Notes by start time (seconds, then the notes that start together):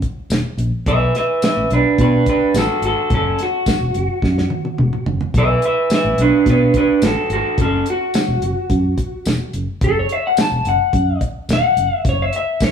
0.02 kick, closed hi-hat
0.30 E1, snare, closed hi-hat, tambourine
0.57 A#1, closed hi-hat
0.86 B1 B4 E5, kick, closed hi-hat
1.15 B4 E5, snare, closed hi-hat
1.42 B4 E5, muted fingered electric bass stroke, snare, closed hi-hat, tambourine
1.57 A1
1.70 B1 D4 B4, closed hi-hat
1.98 B2 D4 B4, kick, closed hi-hat
2.26 D4 B4, kick, closed hi-hat
2.54 A1 F#4, snare, closed hi-hat, tambourine
2.58 A4
2.82 G#1 F#4, closed hi-hat
2.87 A4
3.10 F#1 C#4, kick, closed hi-hat
3.15 A4
3.39 snare, closed hi-hat
3.43 F#4
3.66 muted fingered electric bass stroke, kick, snare, closed hi-hat, tambourine
3.81 E1
3.94 F#1, closed hi-hat
4.22 F#2, kick, snare
4.38 snare
4.50 high tom
4.65 high tom
4.78 E1, mid tom
4.93 mid tom
5.06 F#1, floor tom
5.21 floor tom
5.34 B1 B4, kick, closed hi-hat
5.38 E5
5.62 B4 E5, closed hi-hat
5.90 B4, muted fingered electric bass stroke, snare, closed hi-hat, tambourine
5.95 E5
6.05 A1
6.18 B1 D4 B4, closed hi-hat
6.46 B2 D4 B4, kick, closed hi-hat
6.74 D4 B4, kick, closed hi-hat
7.02 A1 F#4 A4, snare, closed hi-hat, tambourine
7.30 G#1 F#4, closed hi-hat
7.34 A4
7.58 F#1 C#4, kick, closed hi-hat
7.62 A4
7.86 closed hi-hat
7.90 F#4
8.14 muted fingered electric bass stroke, snare, closed hi-hat, tambourine
8.28 E1
8.42 F#1, closed hi-hat
8.70 F#2, kick, closed hi-hat
8.98 kick, closed hi-hat
9.25 E1, snare, closed hi-hat, tambourine
9.53 F#1, closed hi-hat
9.81 F#1 A4, kick, closed hi-hat
9.99 C#5
10.09 E5, closed hi-hat
10.27 F#5
10.37 muted fingered electric bass stroke, snare, closed hi-hat, tambourine
10.41 A5
10.51 E1
10.65 F#1 F#5, closed hi-hat
10.93 F#2, kick, closed hi-hat
11.21 kick, closed hi-hat
11.49 E1, snare, closed hi-hat, tambourine
11.53 F#5
11.76 F#1, closed hi-hat
12.05 F#1, kick, closed hi-hat
12.09 C#5
12.22 E5
12.33 E5, closed hi-hat
12.60 C#5, muted fingered electric bass stroke, kick, snare, closed hi-hat, tambourine